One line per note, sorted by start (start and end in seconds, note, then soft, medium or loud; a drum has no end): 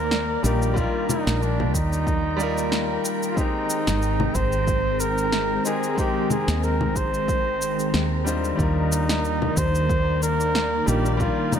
0.00 0.36 D#2 medium
0.00 11.60 D#3 medium
0.00 0.39 G3 medium
0.00 3.34 A#3 medium
0.00 0.40 D#4 medium
0.00 0.41 F4 medium
0.00 0.42 A#4 medium
0.00 0.46 A#4 loud
0.00 0.39 D5 medium
0.00 3.33 D5 medium
0.00 10.84 G5 medium
0.00 11.60 A#5 medium
0.11 snare medium
0.11 cabasa soft
0.43 0.85 A#1 medium
0.43 0.72 G3 medium
0.43 0.73 D4 medium
0.43 0.73 D#4 medium
0.43 0.73 F4 medium
0.43 0.78 G4 medium
0.43 0.74 A#4 medium
0.43 cabasa medium
0.62 cabasa soft
0.74 2.36 D#3 medium
0.74 2.35 G3 medium
0.74 1.09 F4 medium
0.74 2.35 D5 medium
0.74 kick loud
0.74 cabasa soft
0.78 2.37 F4 medium
0.78 2.38 A#4 medium
1.09 1.44 D#4 medium
1.09 low conga medium
1.09 cabasa medium
1.27 1.75 A#1 medium
1.27 snare medium
1.27 cabasa soft
1.42 1.75 D4 medium
1.42 cabasa soft
1.60 low conga medium
1.74 2.97 D#2 medium
1.74 3.01 D#4 medium
1.74 kick loud
1.74 cabasa medium
1.93 cabasa soft
2.07 kick loud
2.07 cabasa soft
2.37 3.32 G3 medium
2.37 3.34 D#4 medium
2.37 3.33 D5 medium
2.37 cabasa medium
2.41 3.35 F4 medium
2.41 3.36 A#4 loud
2.58 cabasa soft
2.72 snare medium
2.72 cabasa soft
3.05 cabasa medium
3.23 cabasa soft
3.31 5.61 G#3 medium
3.31 3.40 F4 medium
3.36 8.23 G#3 medium
3.36 5.61 C4 medium
3.36 8.23 C4 medium
3.36 5.62 D#4 medium
3.36 4.37 D#4 loud
3.36 5.63 G4 medium
3.36 kick loud
3.36 cabasa soft
3.41 5.64 A#4 medium
3.70 cabasa medium
3.87 4.27 G#1 medium
3.87 snare medium
3.87 cabasa soft
4.02 cabasa soft
4.20 low conga medium
4.35 5.58 G#1 medium
4.35 5.02 C5 loud
4.35 kick loud
4.35 cabasa medium
4.52 cabasa soft
4.67 kick loud
4.67 cabasa soft
5.00 5.65 A#4 loud
5.00 cabasa medium
5.18 cabasa soft
5.32 snare medium
5.32 cabasa soft
5.64 5.93 G#3 medium
5.64 5.94 C4 medium
5.64 5.95 D#4 medium
5.64 5.95 G4 medium
5.64 5.96 G#4 medium
5.64 5.95 A#4 medium
5.64 cabasa medium
5.83 cabasa soft
5.95 7.56 G#3 medium
5.95 7.57 C4 medium
5.95 7.58 D#4 medium
5.95 kick loud
5.95 cabasa soft
5.99 6.29 G4 medium
5.99 7.59 A#4 medium
5.99 7.58 G5 medium
6.30 6.66 G#4 medium
6.30 low conga medium
6.30 cabasa medium
6.48 6.96 D#2 medium
6.48 snare medium
6.48 cabasa soft
6.63 6.98 A#4 medium
6.63 cabasa soft
6.81 low conga medium
6.96 7.94 G#1 medium
6.96 8.27 C5 loud
6.96 kick loud
6.96 cabasa medium
7.14 cabasa soft
7.28 kick loud
7.28 cabasa soft
7.62 cabasa medium
7.79 cabasa soft
7.94 8.51 D#2 medium
7.94 snare medium
7.94 cabasa soft
8.24 8.54 G3 medium
8.24 11.60 A#3 medium
8.24 8.55 D4 medium
8.24 8.55 D#4 medium
8.24 8.56 F4 medium
8.24 8.56 C5 medium
8.24 11.60 D5 medium
8.24 cabasa medium
8.44 cabasa soft
8.56 9.49 D#2 medium
8.56 10.82 G3 medium
8.56 10.84 D#4 medium
8.56 9.59 D#4 loud
8.56 10.83 D5 medium
8.56 kick loud
8.56 cabasa soft
8.61 10.85 F4 medium
8.61 10.85 A#4 medium
8.92 cabasa medium
9.09 snare medium
9.09 cabasa soft
9.25 cabasa soft
9.42 low conga medium
9.57 10.80 D#2 medium
9.57 10.23 C5 loud
9.57 kick medium
9.57 cabasa medium
9.75 cabasa soft
9.89 kick loud
9.89 cabasa soft
10.23 10.90 A#4 loud
10.23 cabasa medium
10.40 cabasa soft
10.55 snare medium
10.55 cabasa soft
10.86 11.29 A#1 medium
10.86 11.16 G3 medium
10.86 11.16 D4 medium
10.86 11.16 D#4 medium
10.86 11.60 F4 loud
10.86 11.17 F4 medium
10.86 11.14 G4 medium
10.86 11.17 A#4 medium
10.86 cabasa medium
11.06 cabasa soft
11.14 11.60 G3 medium
11.14 11.22 G4 medium
11.19 11.60 D#3 medium
11.19 11.56 F4 medium
11.19 11.60 F4 medium
11.19 11.60 D5 medium
11.19 kick loud
11.19 cabasa soft
11.23 11.60 A#4 medium
11.52 11.60 D#4 medium
11.52 low conga medium
11.52 cabasa medium